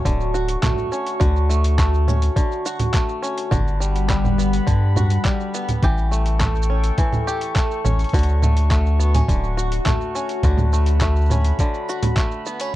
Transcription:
Already playing: A3 C#4 F#4 C#6
0.05 D1 D3, kick, closed hi-hat, shaker
0.20 shaker
0.34 F#4, shaker
0.48 closed hi-hat, shaker
0.63 A3, kick, clap, closed hi-hat, low conga, shaker
0.67 low conga
0.72 low conga
0.77 low conga, shaker
0.82 low conga
0.87 low conga
0.92 C#4, shaker
1.07 closed hi-hat, shaker
1.20 D2 D3 F#4, kick, closed hi-hat, shaker
1.36 shaker
1.49 A3, shaker
1.64 closed hi-hat, shaker
1.78 A3, kick, clap, closed hi-hat, shaker
1.94 shaker
2.08 C#4, low conga, shaker
2.22 closed hi-hat, shaker
2.36 D3, kick, closed hi-hat, shaker
2.51 shaker
2.65 F#4, shaker
2.79 closed hi-hat, low conga, shaker
2.94 A3, kick, clap, closed hi-hat, shaker
3.09 shaker
3.22 C#4, shaker
3.38 closed hi-hat, shaker
3.51 G1 D3 G3 F#4 F#5 B5, kick, closed hi-hat, low conga, shaker
3.68 shaker
3.80 G3, shaker
3.96 closed hi-hat, shaker
4.09 G3, kick, clap, closed hi-hat, shaker
4.24 low conga, shaker
4.38 B3, shaker
4.53 closed hi-hat, shaker
4.67 G2 D3, kick, closed hi-hat, shaker
4.96 F#4, low conga, shaker
5.10 closed hi-hat, shaker
5.25 G3, kick, clap, closed hi-hat, shaker
5.40 shaker
5.54 B3, shaker
5.69 closed hi-hat, low conga, shaker
5.82 A1 E3 G4 A4 G5 C#6, kick, closed hi-hat, shaker
5.97 shaker
6.11 A3, shaker
6.26 closed hi-hat, shaker
6.40 A3, kick, clap, closed hi-hat, low conga, shaker
6.55 shaker
6.62 shaker
6.70 C#4
6.84 closed hi-hat, shaker
6.98 E3, kick, closed hi-hat, shaker
7.12 low conga, shaker
7.27 G4, shaker
7.41 closed hi-hat, shaker
7.56 A3, kick, clap, closed hi-hat, shaker
7.71 shaker
7.85 A1 C#4, low conga, shaker
7.99 closed hi-hat, shaker
8.04 closed hi-hat
8.09 kick, closed hi-hat
8.13 D2 D3 F#4, closed hi-hat, shaker
8.19 closed hi-hat
8.23 closed hi-hat
8.28 shaker
8.42 A3, low conga, shaker
8.57 closed hi-hat, shaker
8.71 A3, kick, clap, closed hi-hat, shaker
8.86 shaker
9.00 B3, shaker
9.14 C#4, closed hi-hat, low conga, shaker
9.28 D1 D3, kick, closed hi-hat, shaker
9.44 shaker
9.57 F#4, shaker
9.72 closed hi-hat, shaker
9.86 A3, kick, clap, closed hi-hat, low conga, shaker
10.01 shaker
10.15 C#4, shaker
10.29 closed hi-hat, shaker
10.43 D2 D3 F#4 B5, kick, closed hi-hat, shaker
10.57 low conga, shaker
10.73 A3, shaker
10.86 closed hi-hat, shaker
11.01 A3, kick, clap, closed hi-hat, shaker
11.16 shaker
11.21 shaker
11.25 shaker
11.30 C#4, low conga, shaker
11.35 shaker
11.40 shaker
11.45 closed hi-hat, shaker
11.59 D3, kick, closed hi-hat, shaker
11.74 shaker
11.89 F#4, shaker
12.03 closed hi-hat, low conga, shaker
12.16 A3, kick, clap, closed hi-hat, shaker
12.31 shaker
12.46 B3, shaker
12.60 C#4, closed hi-hat, shaker

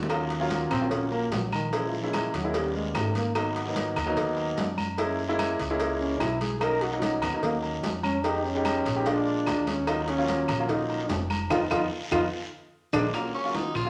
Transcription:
Already playing: D#2
0.03 low bongo
0.09 F#3 A#3 C#4 F4, cowbell, high conga, low agogo, long guiro, claves, maracas
0.30 cowbell, high conga, maracas
0.39 F#3 A#3 C#4 F4
0.50 cowbell, high conga, low timbale, low agogo, short guiro, maracas
0.70 A#1 C4, cowbell, high conga, low conga, low agogo, short guiro, claves, maracas
0.80 F#3 A#3 C#4 F4
0.91 C#4, cowbell, high conga, low conga, long guiro, maracas
1.12 A#3, high conga, low agogo, maracas
1.32 A#1 F#3, cowbell, high conga, low timbale, short guiro, maracas
1.52 D#3, high conga, low agogo, short guiro, claves, maracas
1.72 E3 G#3 A#3 C#4 E4, cowbell, high conga, low agogo, long guiro, maracas
1.87 F3
1.93 high conga, maracas
2.00 E3 G#3 A#3 C#4 E4
2.13 C#3, cowbell, high conga, low timbale, low agogo, short guiro, claves, maracas
2.34 D#2 F#3, cowbell, short guiro, maracas
2.43 G#3 A#3 C#4 E4
2.54 G3 A#3 B3 C#4, cowbell, high conga, low agogo, long guiro, maracas
2.74 G#3, high conga, maracas
2.94 G#1 A3, cowbell, high conga, low timbale, low agogo, short guiro, claves, maracas
3.15 A#3, cowbell, high conga, short guiro, maracas
3.35 F#3 A#3 B3 D#4, cowbell, high conga, low agogo, long guiro, claves, maracas
3.56 cowbell, high conga, maracas
3.65 F#3 A#3 B3 D#4
3.76 cowbell, high conga, low timbale, low agogo, short guiro, maracas
3.96 D#2, cowbell, high conga, low conga, low agogo, short guiro, claves, maracas
4.06 F#3 A#3 B3 D#4
4.17 cowbell, high conga, low conga, long guiro, maracas
4.37 high conga, low agogo, maracas
4.57 F#2, cowbell, high conga, low timbale, short guiro, maracas
4.78 high conga, low agogo, short guiro, claves, maracas
4.98 G#3 A#3 C#4 E4, cowbell, high conga, low agogo, long guiro, maracas
5.19 high conga, maracas
5.28 G#3 A#3 C#4 E4
5.39 cowbell, high conga, low timbale, low agogo, short guiro, claves, maracas
5.59 C#2, cowbell, short guiro, maracas
5.69 G#3 A#3 C#4 E4
5.79 cowbell, high conga, low agogo, long guiro, maracas
6.00 C#4, high conga, maracas
6.20 B1 E4, cowbell, high conga, low timbale, low agogo, short guiro, claves, maracas
6.41 G#4, cowbell, high conga, short guiro, maracas
6.61 F#3 A#3 C#4 D#4 A#4, cowbell, high conga, low agogo, long guiro, claves, maracas
6.81 F#4, cowbell, high conga, maracas
6.92 F#3 A#3 C#4 D#4
7.02 D#4, cowbell, high conga, low timbale, low agogo, short guiro, maracas
7.22 D#2 B3, cowbell, high conga, low conga, low agogo, short guiro, claves, maracas
7.33 F#3 A#3 C#4 D#4
7.43 A#3, cowbell, high conga, low conga, long guiro, maracas
7.63 high conga, low agogo, maracas
7.83 F2, cowbell, high conga, low timbale, short guiro, maracas
8.03 C#4, high conga, low agogo, short guiro, claves, maracas
8.24 G#3 B3 D#4 G4, cowbell, high conga, low agogo, long guiro, maracas
8.44 C#4, high conga, maracas
8.55 G#3 B3 D#4 G4
8.65 cowbell, high conga, low timbale, low agogo, short guiro, claves, maracas
8.85 A#1, cowbell, short guiro, maracas
8.95 G#3 B3 D#4 G4
9.05 G#3 A#3 D4 F4, cowbell, high conga, low agogo, long guiro, maracas
9.26 high conga, maracas
9.46 D#2, cowbell, high conga, low timbale, low agogo, short guiro, claves, maracas
9.67 C#4, cowbell, high conga, short guiro, maracas
9.87 F#3 A#3 C#4 D#4 F4, cowbell, low agogo, long guiro, claves, maracas
10.08 C#4, cowbell, high conga, maracas
10.17 F#3 A#3 C#4 F4
10.28 cowbell, high conga, low timbale, low agogo, short guiro, maracas
10.48 A#1, cowbell, high conga, low conga, low agogo, short guiro, claves, maracas
10.58 F#3 A#3 C#4 F4
10.69 D#4, cowbell, high conga, low conga, long guiro, maracas
10.89 high conga, low agogo, maracas
11.09 F1, cowbell, high conga, low timbale, short guiro, maracas
11.30 high conga, low agogo, short guiro, claves, maracas
11.50 F2 B3 D#4 F4, cowbell, low conga, high timbale, long guiro, claves, maracas
11.71 F2 B3 D#4 F4, cowbell, low conga, high timbale, long guiro, claves, maracas
12.11 F2 B3 D#4 F4, cowbell, low conga, high timbale, long guiro, claves, maracas
12.93 A#1 G#3 A#3 D4, cowbell, low conga, high timbale, long guiro, claves, maracas
13.14 A#2 F#3 A#3 C#4 F4, high bongo, high conga, high timbale, long guiro, claves, maracas
13.34 C#3 C#4, high conga, maracas
13.44 F#3 A#3 C#4 F4
13.55 D#3 D#4, high bongo, high conga, high timbale, short guiro, maracas
13.75 A#1 F3 F4, high bongo, high conga, low conga, high timbale, short guiro, claves, maracas
13.85 F#3 A#3 C#4 F4

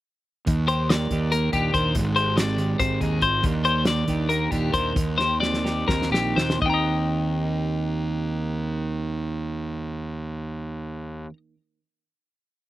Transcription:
0.46 D#2, kick, closed hi-hat
0.68 G4 C5, closed hi-hat
0.90 A#3 D5, snare, closed hi-hat
1.11 D#2 D#3 G4, kick, closed hi-hat
1.32 A#3 A#4, closed hi-hat
1.52 D#2 A#2 D4 G4, kick, closed hi-hat
1.74 D#2 A#4 C5, kick, closed hi-hat
1.95 G#1 G#2, kick, closed hi-hat
2.16 G4 C5, closed hi-hat
2.37 C4 D5, snare, closed hi-hat
2.57 D#3 G4, closed hi-hat
2.79 G#1 C4 C5, kick, snare, closed hi-hat
3.01 D#2 D#3 D#4 G#4, kick, closed hi-hat
3.22 G#1 F4 C5, kick, closed hi-hat
3.43 D#2 D#3 A#3 D4 G4, kick, closed hi-hat
3.64 G4 C5, closed hi-hat
3.85 A#3 D5, snare, closed hi-hat
4.07 D#2 D#3 G4, kick, closed hi-hat
4.29 A#3 A#4, closed hi-hat
4.51 D#2 A#2 D4 G4, kick, closed hi-hat
4.73 D#2 A#4 C5, kick, closed hi-hat
4.95 D#2, kick, closed hi-hat
5.18 G4 C5, snare
5.40 C4 D5, snare
5.54 snare
5.64 D#3 G4, snare
5.88 D#2 C4 A#4, kick, snare
6.02 snare
6.10 A#1 A#2 D#4 G4
6.14 snare
6.36 D#2 G4 C5, snare
6.50 snare
6.62 D#2 D#3 D#5, kick
6.66 C4 D#4 G5 A#5
6.70 G4 D#5

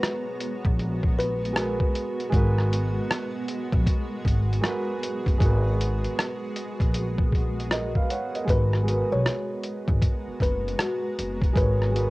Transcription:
Already playing: G#3 B3 F#4 A#4 B4 C5 C#5 A#5
0.03 cross-stick, closed hi-hat
0.40 closed hi-hat
0.65 A#1, kick
0.79 closed hi-hat
1.03 kick
1.19 B4, closed hi-hat
1.45 closed hi-hat
1.53 G#3 F#4, cross-stick
1.57 A#4 B4, closed hi-hat
1.80 kick
1.95 closed hi-hat
2.20 closed hi-hat
2.30 G#1 G#3 F#4 G#4, kick
2.34 A#4 B4, closed hi-hat
2.58 cross-stick
2.73 closed hi-hat
3.11 cross-stick, closed hi-hat
3.48 closed hi-hat
3.72 A#1, kick
3.87 kick, closed hi-hat
4.25 G#1, kick, closed hi-hat
4.53 closed hi-hat
4.61 G#3 F#4, cross-stick, closed hi-hat
4.66 A#4 B4
5.03 closed hi-hat
5.26 F#1, kick, closed hi-hat
5.38 G#1 G#3 F#4, kick, closed hi-hat
5.43 A#4 B4
5.81 closed hi-hat
6.04 closed hi-hat
6.19 cross-stick, closed hi-hat
6.56 closed hi-hat
6.80 A#1, kick, closed hi-hat
6.94 closed hi-hat
7.19 kick
7.33 kick, closed hi-hat
7.60 closed hi-hat
7.71 A#4 D#5, cross-stick, closed hi-hat
7.95 B4 F5, kick
8.10 C#5 F#5, closed hi-hat
8.35 A#4 D#5, closed hi-hat
8.45 G#1 G#3 B3 F#4 A#5, kick
8.49 A#4 B4, closed hi-hat
8.73 cross-stick
8.83 G#3 F#4
8.88 A#4 B4, closed hi-hat
9.12 B1 C#5
9.26 cross-stick, closed hi-hat
9.64 closed hi-hat
9.88 G#1, kick
10.02 kick, closed hi-hat
10.28 muted upright bass stroke
10.40 F#1 B4, kick, closed hi-hat
10.68 closed hi-hat
10.79 F#4, cross-stick, closed hi-hat
11.18 F#1, closed hi-hat
11.41 kick, closed hi-hat
11.53 G#1 G#3 F#4, kick, closed hi-hat
11.57 A#4 B4 C#5
11.82 cross-stick
11.91 G#3 F#4
11.96 A#4 B4, closed hi-hat

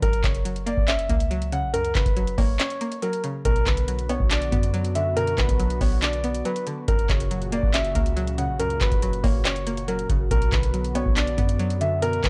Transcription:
0.02 F#1 F#2 A#4, kick, closed hi-hat
0.13 closed hi-hat
0.24 F#1 C#3 C#5, kick, clap, closed hi-hat
0.35 closed hi-hat
0.45 F#3, closed hi-hat
0.56 closed hi-hat
0.66 A#3 D5, closed hi-hat
0.77 F#1, kick
0.88 C#4 E5, clap, closed hi-hat
0.99 closed hi-hat
1.09 C#2 A#3, kick, closed hi-hat
1.20 closed hi-hat
1.31 F#3, closed hi-hat
1.42 closed hi-hat
1.52 C#3 F#5, closed hi-hat
1.63 A#1
1.74 F#2 A#4, closed hi-hat
1.79 C#2
1.85 closed hi-hat
1.95 F#1 C#3 B4, kick, clap, closed hi-hat
2.06 F#1, kick, closed hi-hat
2.17 F#3, closed hi-hat
2.27 closed hi-hat
2.38 F#1 A#3 C#5, kick, open hi-hat
2.60 C#4 C#5, clap, closed hi-hat
2.70 closed hi-hat
2.81 A#3, closed hi-hat
2.92 closed hi-hat
3.02 F#3 A#4, closed hi-hat
3.13 closed hi-hat
3.24 C#3, closed hi-hat
3.45 B1 B2 D3 B3 F#4 A#4, kick, closed hi-hat
3.56 closed hi-hat
3.67 B1 D3 B4, kick, clap, closed hi-hat
3.77 closed hi-hat
3.88 F#3, closed hi-hat
3.99 closed hi-hat
4.09 B3 C#5, closed hi-hat
4.20 B1, kick
4.31 D4 D5, clap, closed hi-hat
4.42 A#1, closed hi-hat
4.52 F#2 B3, kick, closed hi-hat
4.63 closed hi-hat
4.74 F#3, closed hi-hat
4.85 closed hi-hat
4.95 D3 E5, closed hi-hat
5.17 B2 A#4, closed hi-hat
5.27 closed hi-hat
5.38 B1 D3 B4, kick, clap, closed hi-hat
5.49 B1, kick, closed hi-hat
5.60 F#3, closed hi-hat
5.70 closed hi-hat
5.81 B1 B3 C#5, kick, open hi-hat
6.02 D4 D5, clap, closed hi-hat
6.13 closed hi-hat
6.24 B3, closed hi-hat
6.35 closed hi-hat
6.45 F#3 B4, closed hi-hat
6.56 closed hi-hat
6.67 D3, closed hi-hat
6.88 F#1 F#2 A#2 C#3 F#4 A#4, kick, closed hi-hat
6.99 closed hi-hat
7.09 F#1 C#3 C#5, kick, clap, closed hi-hat
7.20 closed hi-hat
7.31 F#3, closed hi-hat
7.42 closed hi-hat
7.52 A#3 D5, closed hi-hat
7.63 F#1, kick
7.74 C#4 E5, clap, closed hi-hat
7.85 closed hi-hat
7.95 C#2 A#3, kick, closed hi-hat
8.06 closed hi-hat
8.17 F#3, closed hi-hat
8.27 closed hi-hat
8.38 C#3 F#5, closed hi-hat
8.49 A#1
8.59 F#2 A#4, closed hi-hat
8.65 C#2
8.70 closed hi-hat
8.81 F#1 C#3 B4, kick, clap, closed hi-hat
8.92 F#1, kick, closed hi-hat
9.02 F#3, closed hi-hat
9.13 closed hi-hat
9.24 F#1 A#3 C#5, kick, open hi-hat
9.45 C#4 C#5, clap, closed hi-hat
9.56 closed hi-hat
9.67 A#3, closed hi-hat
9.77 closed hi-hat
9.88 F#3 A#4, closed hi-hat
9.99 closed hi-hat
10.09 F#1 C#3, kick, closed hi-hat
10.31 B1 B2 D3 B3 A#4, kick, closed hi-hat
10.42 closed hi-hat
10.52 B1 D3 B4, kick, clap, closed hi-hat
10.63 closed hi-hat
10.74 F#3, closed hi-hat
10.84 closed hi-hat
10.95 B3 C#5, closed hi-hat
11.06 B1, kick
11.16 D4 D5, clap, closed hi-hat
11.27 A#1, closed hi-hat
11.38 F#2 B3, kick, closed hi-hat
11.49 closed hi-hat
11.59 F#3, closed hi-hat
11.70 closed hi-hat
11.81 D3 E5, closed hi-hat
12.02 B2 A#4, closed hi-hat
12.13 closed hi-hat
12.24 B1 D3 B4, kick, clap, closed hi-hat

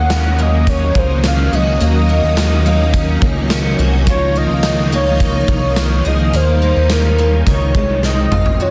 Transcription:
Already playing: D#2 D#3 F#3 A#3 C#4 D#4 F#5
0.10 C#4, snare, closed hi-hat, tambourine
0.38 A#3 D#5
0.67 C#4 C#5, kick, closed hi-hat
0.95 C#2 A#3 C5, kick
1.24 C#4 F5, snare, closed hi-hat, tambourine
1.52 C#2 F#4 D#5
1.80 D#2 A#3, closed hi-hat
2.09 A#3
2.23 D#2
2.37 C#4, snare, closed hi-hat, tambourine
2.66 A#3
2.94 C#4, kick, closed hi-hat
3.22 C#2 A#3, kick
3.50 C#4, snare, closed hi-hat, tambourine
3.79 C2 F#4
4.06 C#2 D#3 F3 A#3 D#4 C#5, kick, closed hi-hat
4.36 A#3 D#5
4.50 C#2
4.63 D#4, snare, closed hi-hat, tambourine
4.92 A#3 C#5
5.20 D#4, kick, closed hi-hat
5.48 C2 A#3, kick
5.76 D#4, snare, closed hi-hat, tambourine
6.05 C#2 G#4 D#5
6.33 D#2 G3 A#3 D#4 C5, closed hi-hat
6.62 A#3
6.76 D#2
6.90 C#4 A#4, snare, closed hi-hat, tambourine
7.18 A#3
7.46 C#2 C3 D#3 F3 D#4 C#5, kick, closed hi-hat
7.75 C2 G#3, kick
8.03 C4 D#5, snare
8.32 G#1 F4, mid tom
8.46 floor tom
8.59 B2 F#3 G#3 D#4 C#5

